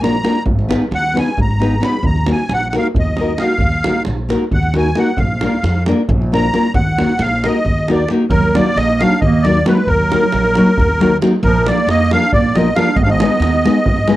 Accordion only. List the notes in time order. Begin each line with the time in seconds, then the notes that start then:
0.03 A#5
0.95 F#5
1.19 G#5
1.41 A#5
1.84 B5
2.06 A#5
2.32 G#5
2.54 F#5
2.69 F#5
2.78 F5
2.99 D#5
3.39 F5
4.54 F#5
4.78 G#5
4.98 F#5
5.18 F5
6.34 A#5
6.75 F#5
7.22 F5
7.44 D#5
7.92 D5
8.31 A#4
8.55 D5
8.77 D#5
9.00 F5
9.21 D#5
9.43 D5
9.67 B4
9.87 A#4
11.44 A#4
11.68 D5
11.90 D#5
12.13 F5
12.33 D5
12.54 D#5
12.76 F5
12.96 D#5
13.03 F5
13.10 D#5